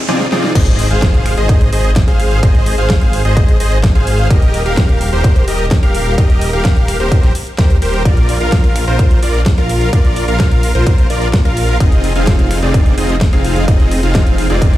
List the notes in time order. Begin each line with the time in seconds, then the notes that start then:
0.09 C4 D#4 F4 G#4 D5, snare
0.20 snare
0.32 C4 D#4 F4 G#4 D5, snare
0.44 snare
0.55 G#1 C5, kick, closed hi-hat, crash, ride, impact
0.67 closed hi-hat
0.79 open hi-hat
0.91 G#1 G#4 C5 F5, closed hi-hat
1.02 kick, snare, closed hi-hat, ride
1.14 closed hi-hat
1.26 finger snap, open hi-hat
1.37 G#1 G#4 C5 D#5, closed hi-hat
1.49 kick, closed hi-hat, ride
1.61 closed hi-hat
1.73 G#1 G#4 C5 D#5, open hi-hat
1.84 closed hi-hat
1.96 kick, snare, closed hi-hat, ride
2.08 G#1 G#4 C5 F5, closed hi-hat
2.20 open hi-hat
2.31 closed hi-hat
2.43 G#1 G#4 C5 D#5, kick, closed hi-hat, ride
2.55 closed hi-hat
2.66 open hi-hat
2.78 G#1 G#4 C5 F5, closed hi-hat
2.90 kick, snare, closed hi-hat, ride
3.01 closed hi-hat
3.13 open hi-hat
3.25 G#1 G#4 C5 D#5, closed hi-hat
3.37 kick, closed hi-hat, ride
3.48 closed hi-hat
3.60 G#1 G#4 C5 D#5, open hi-hat
3.72 closed hi-hat
3.84 kick, snare, closed hi-hat, ride
3.95 G#1 G#4 C5 F5, closed hi-hat
4.07 open hi-hat
4.19 closed hi-hat
4.30 D#1 G4 A#4 D#5, kick, closed hi-hat, ride
4.42 closed hi-hat
4.54 open hi-hat
4.66 D#1 G4 A#4 F5, closed hi-hat
4.77 kick, snare, closed hi-hat, ride
4.89 closed hi-hat
5.01 open hi-hat
5.12 D#1 G4 A#4 C5, closed hi-hat
5.24 kick, closed hi-hat, ride
5.36 closed hi-hat
5.48 D#1 G4 A#4 D#5, open hi-hat
5.59 closed hi-hat
5.71 kick, snare, closed hi-hat, ride
5.83 D#1 G4 A#4 F5, closed hi-hat
5.95 open hi-hat
6.18 D#1 G4 A#4 D#5, kick, closed hi-hat, ride
6.30 closed hi-hat
6.41 open hi-hat
6.53 D#1 G4 A#4 F5, closed hi-hat
6.65 kick, snare, closed hi-hat, ride
6.77 closed hi-hat
6.88 finger snap, open hi-hat
7.00 D#1 G4 A#4 C5, closed hi-hat
7.12 kick, closed hi-hat, ride
7.23 snare, closed hi-hat
7.35 open hi-hat
7.47 closed hi-hat
7.58 D#2 G4 A#4 C5, kick, snare, closed hi-hat, ride
7.70 closed hi-hat
7.82 D#1 G4 A#4 C5, open hi-hat
7.94 closed hi-hat
8.05 A#1 F4, kick, closed hi-hat, ride
8.17 closed hi-hat
8.29 open hi-hat
8.41 A#1 F4 A#4 F5, closed hi-hat
8.52 kick, snare, closed hi-hat, ride
8.64 closed hi-hat
8.76 finger snap, open hi-hat
8.87 A#1 F4 A#4 C5
8.99 kick, closed hi-hat, ride
9.11 closed hi-hat
9.23 A#1 F4 A#4 D5, open hi-hat
9.34 closed hi-hat
9.46 kick, snare, closed hi-hat, ride
9.58 A#1 F4 A#4 F5, closed hi-hat
9.69 open hi-hat
9.81 closed hi-hat
9.93 A#1 F4 A#4 D5, kick, closed hi-hat, ride
10.05 closed hi-hat
10.16 open hi-hat
10.28 A#1 F4 A#4 F5, closed hi-hat
10.40 kick, snare, closed hi-hat, ride
10.51 closed hi-hat
10.63 open hi-hat
10.75 A#1 F4 A#4 C5, closed hi-hat
10.87 kick, closed hi-hat, ride
10.98 closed hi-hat
11.10 A#1 F4 A#4 D5, open hi-hat
11.22 closed hi-hat
11.33 kick, snare, closed hi-hat, ride
11.45 A#1 F4 A#4 F5, closed hi-hat
11.57 open hi-hat
11.69 closed hi-hat
11.80 F1 C4 D#4 F4 G#4 D#5, kick, closed hi-hat, ride
11.92 closed hi-hat
12.04 open hi-hat
12.16 F1 C4 D#4 F4 G#4 F5, closed hi-hat
12.27 kick, snare, closed hi-hat, ride
12.39 closed hi-hat
12.51 finger snap, open hi-hat
12.62 F1 C4 D#4 F4 G#4 D5, closed hi-hat
12.74 kick, closed hi-hat, ride
12.86 closed hi-hat
12.98 F1 C4 D#4 F4 G#4 D#5, open hi-hat
13.09 closed hi-hat
13.21 kick, snare, closed hi-hat, ride
13.33 F1 C4 D#4 F4 G#4 F5, closed hi-hat
13.45 open hi-hat
13.56 closed hi-hat
13.68 F1 C4 D#4 F4 G#4 D#5, kick, closed hi-hat, ride
13.80 closed hi-hat
13.91 open hi-hat
14.03 F1 C4 D#4 F4 G#4 F5, closed hi-hat
14.15 kick, snare, closed hi-hat, ride
14.27 closed hi-hat
14.38 open hi-hat
14.50 F1 C4 D#4 F4 G#4 D5, closed hi-hat
14.62 kick, closed hi-hat, ride, reverse cymbal
14.74 closed hi-hat